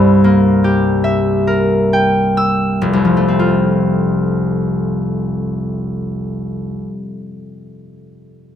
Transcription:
0.00 2.87 C2 medium
0.00 2.88 G2 medium
0.24 2.88 A#3 medium
0.64 2.88 G4 medium
1.04 2.88 E5 medium
1.47 2.88 A#4 medium
1.93 2.88 G5 medium
2.37 2.87 E6 medium
2.82 6.72 F1 medium
2.93 6.83 C2 medium
3.05 6.87 F3 soft
3.17 6.50 A3 medium
3.28 6.36 C4 medium
3.39 6.47 F4 medium

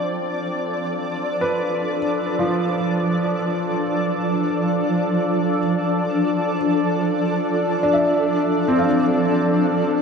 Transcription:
0.00 10.02 F3 medium
0.00 0.46 C4 medium
0.00 1.98 C4 medium
0.00 10.02 D4 medium
0.00 10.02 A4 medium
0.00 10.02 D5 medium
1.41 5.58 B4 medium
2.39 6.56 F3 medium
7.83 8.85 D4 medium
7.93 8.95 E5 soft
8.68 10.02 C4 medium
8.79 10.02 F5 medium

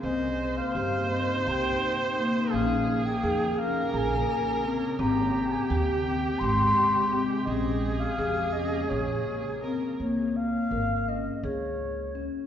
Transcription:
0.01 0.60 C2 medium
0.01 2.50 C3 medium
0.01 4.95 A#3 medium
0.01 0.65 C4 medium
0.01 2.50 D#4 medium
0.01 0.70 C5 medium
0.01 0.59 D#5 medium
0.57 1.11 F5 medium
0.74 1.31 G2 medium
0.74 1.06 G4 medium
0.74 2.53 C5 loud
1.11 1.42 C4 medium
1.11 1.49 D#5 medium
1.47 1.75 C2 medium
1.47 2.07 G4 medium
1.47 1.52 A#5 medium
1.51 2.27 G5 medium
2.18 2.48 A#3 medium
2.52 3.08 A#1 medium
2.52 4.97 C#3 medium
2.52 3.13 C#4 medium
2.52 3.60 G#4 medium
2.52 4.97 G#4 medium
2.52 3.07 F5 medium
3.05 3.60 G5 medium
3.23 3.78 F2 medium
3.23 3.54 G#4 medium
3.58 3.89 C#4 medium
3.58 5.00 A#4 loud
3.58 3.92 F5 medium
3.93 4.21 A#1 medium
3.93 4.54 G#4 medium
3.93 3.99 A#5 medium
3.98 4.69 G#5 medium
4.64 4.94 C4 medium
4.99 5.54 G#1 loud
4.99 7.46 C3 medium
4.99 7.45 G#3 medium
4.99 5.60 C4 medium
4.99 7.47 G4 medium
4.99 7.45 G4 medium
4.99 5.53 A#5 medium
5.52 5.70 G#5 medium
5.69 6.26 D#2 loud
5.69 6.01 G4 medium
5.69 6.40 G5 loud
6.06 6.36 C4 medium
6.39 6.69 G#1 loud
6.39 7.02 G#3 medium
6.39 7.20 C6 loud
7.12 7.42 C4 medium
7.45 8.03 A#1 medium
7.45 8.09 C#4 medium
7.45 9.60 G#4 medium
7.45 8.01 D#5 medium
7.49 9.99 C#3 medium
7.49 9.99 A#3 medium
7.49 9.99 G#4 loud
8.00 8.54 F5 medium
8.18 8.75 F2 loud
8.18 8.50 G#4 medium
8.53 8.86 C#4 medium
8.53 8.91 D#5 medium
8.89 9.19 A#1 medium
8.89 9.54 G#4 medium
8.89 9.72 C#5 medium
9.63 9.95 C4 medium
9.63 9.97 A#4 medium
10.00 10.57 C#2 medium
10.00 10.62 A#3 medium
10.00 10.38 C#5 medium
10.36 11.10 F5 loud
10.71 11.28 G#1 medium
10.71 11.03 A#4 medium
11.08 11.39 C#4 medium
11.08 11.46 D#5 medium
11.43 12.27 C#2 loud
11.43 12.05 G#4 medium
11.43 12.25 C#5 medium
12.15 12.46 C#4 medium

